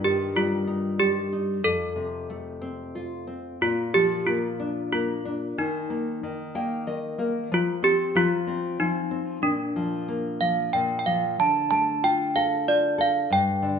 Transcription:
0.00 1.61 G2 medium
0.04 1.29 D#3 soft
0.04 0.37 G4 medium
0.35 0.99 G3 medium
0.35 1.02 F4 medium
0.67 1.31 D#4 soft
0.99 1.63 G3 soft
0.99 1.60 G4 medium
1.33 1.64 D#4 soft
1.63 3.57 F2 soft
1.63 3.24 A4 medium
1.96 3.24 C3 soft
2.30 3.57 A3 soft
2.62 3.26 C4 medium
2.95 3.59 F4 soft
3.27 3.60 C4 soft
3.61 5.53 A#2 soft
3.61 3.96 F4 medium
3.94 5.21 F3 soft
3.94 4.28 G4 medium
4.26 4.92 A#3 soft
4.26 4.91 F4 medium
4.60 5.24 D4 medium
4.93 5.56 A#3 soft
4.93 5.54 F4 medium
5.25 5.57 D4 soft
5.58 6.22 D#3 medium
5.58 7.16 D#4 medium
5.90 6.54 A#3 soft
6.23 6.86 D#3 soft
6.55 7.17 A#3 soft
6.55 6.85 G5 medium
6.87 7.49 D#3 soft
6.87 7.17 D#5 medium
7.18 7.50 A#3 soft
7.18 7.49 A#4 medium
7.52 8.14 F3 medium
7.52 7.85 F4 medium
7.83 8.14 C4 soft
7.83 8.17 G4 medium
8.15 8.79 F3 medium
8.15 8.76 F4 medium
8.47 9.10 C4 medium
8.80 9.41 F3 soft
8.80 9.46 D#4 medium
9.11 9.42 C4 soft
9.42 10.73 A#2 medium
9.42 11.02 D4 medium
9.76 10.40 F3 soft
10.08 11.35 A#3 medium
10.41 11.05 F3 soft
10.41 10.75 F5 medium
10.73 11.37 A#2 soft
10.73 10.98 G5 medium
10.99 11.06 G5 medium
11.06 11.38 F3 soft
11.06 11.40 F5 medium
11.39 13.26 D3 medium
11.39 11.69 A5 medium
11.71 12.95 A3 soft
11.71 12.04 A5 medium
12.03 12.67 F4 medium
12.03 12.37 G5 medium
12.36 12.97 A4 medium
12.36 12.68 F5 medium
12.68 13.29 F4 soft
12.68 13.00 D5 medium
12.98 13.29 A4 medium
12.98 13.32 F5 medium
13.30 13.79 G2 medium
13.30 13.79 G5 medium
13.62 13.79 D3 soft

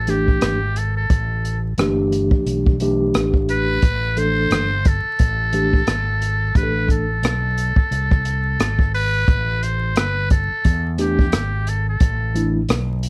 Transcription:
0.00 0.39 A1 medium
0.00 0.11 A4 medium
0.07 0.57 E3 medium
0.07 0.58 A3 medium
0.07 0.58 D4 medium
0.07 0.58 G4 medium
0.07 0.79 G4 medium
0.07 cross-stick soft
0.07 closed hi-hat medium
0.28 kick medium
0.41 1.06 G#1 medium
0.41 cross-stick loud
0.41 closed hi-hat medium
0.76 0.96 A4 medium
0.76 closed hi-hat medium
0.97 1.60 A4 medium
1.10 1.75 A1 medium
1.10 kick loud
1.10 closed hi-hat medium
1.45 closed hi-hat medium
1.78 2.29 G1 medium
1.78 2.75 E3 medium
1.78 2.75 A3 medium
1.78 2.75 D4 medium
1.78 2.75 G4 medium
1.78 cross-stick loud
1.78 closed hi-hat medium
2.12 closed hi-hat medium
2.31 kick medium
2.46 3.11 B1 medium
2.46 closed hi-hat medium
2.66 kick medium
2.80 3.77 E3 medium
2.80 3.77 A3 medium
2.80 3.78 D4 medium
2.80 3.78 G4 medium
2.80 closed hi-hat medium
3.14 3.79 A1 medium
3.14 cross-stick loud
3.14 closed hi-hat medium
3.34 kick medium
3.49 4.20 B4 loud
3.49 closed hi-hat medium
3.82 4.47 A1 medium
3.82 kick loud
3.82 closed hi-hat medium
4.16 4.67 E3 medium
4.16 4.67 A3 medium
4.16 4.67 D4 soft
4.16 4.67 A4 medium
4.16 4.89 C5 loud
4.16 closed hi-hat medium
4.50 5.02 G1 medium
4.50 cross-stick loud
4.50 closed hi-hat medium
4.85 6.58 A4 loud
4.85 kick medium
4.85 closed hi-hat medium
5.05 muted fretless electric bass stroke soft
5.19 5.84 A1 medium
5.19 kick medium
5.19 closed hi-hat medium
5.53 5.79 E3 medium
5.53 5.79 A3 medium
5.53 5.79 D4 medium
5.53 5.79 G4 medium
5.53 closed hi-hat medium
5.73 kick medium
5.87 6.52 G#1 medium
5.87 cross-stick loud
5.87 closed hi-hat medium
6.22 closed hi-hat medium
6.55 7.20 A1 medium
6.55 7.05 E3 medium
6.55 7.06 A3 medium
6.55 7.06 D4 soft
6.55 6.64 G4 soft
6.55 6.90 B4 medium
6.55 kick loud
6.55 closed hi-hat medium
6.63 7.09 A4 medium
6.89 8.91 A4 medium
6.89 kick medium
6.89 closed hi-hat medium
7.23 7.74 B1 medium
7.23 cross-stick loud
7.23 closed hi-hat medium
7.58 closed hi-hat medium
7.76 kick medium
7.91 8.56 C2 medium
7.91 closed hi-hat medium
8.11 kick medium
8.11 cross-stick soft
8.25 closed hi-hat medium
8.59 9.24 G#1 medium
8.59 cross-stick loud
8.59 closed hi-hat medium
8.79 kick medium
8.94 9.64 B4 loud
8.94 open hi-hat soft
9.28 9.96 A1 medium
9.28 kick loud
9.28 closed hi-hat medium
9.63 10.00 C5 medium
9.63 closed hi-hat medium
9.96 10.47 G1 medium
9.96 10.31 B4 loud
9.96 cross-stick loud
9.96 closed hi-hat medium
10.30 10.95 A4 medium
10.30 kick medium
10.30 closed hi-hat medium
10.51 muted fretless electric bass stroke soft
10.65 11.34 E2 medium
10.65 kick medium
10.65 closed hi-hat medium
10.98 11.24 E3 medium
10.98 11.24 A3 medium
10.98 11.24 D4 medium
10.98 11.24 G4 medium
10.98 11.70 G4 medium
10.98 cross-stick soft
10.98 closed hi-hat medium
11.19 kick medium
11.32 11.97 G#1 medium
11.32 cross-stick loud
11.32 closed hi-hat medium
11.67 11.88 A4 medium
11.67 closed hi-hat medium
11.89 12.52 A4 medium
12.00 12.65 A1 loud
12.00 kick loud
12.00 closed hi-hat medium
12.34 12.60 E3 medium
12.34 12.60 A3 medium
12.34 12.61 D4 medium
12.34 12.61 E4 medium
12.34 closed hi-hat medium
12.69 13.09 B1 medium
12.69 cross-stick loud
12.69 closed hi-hat medium
13.03 closed hi-hat medium

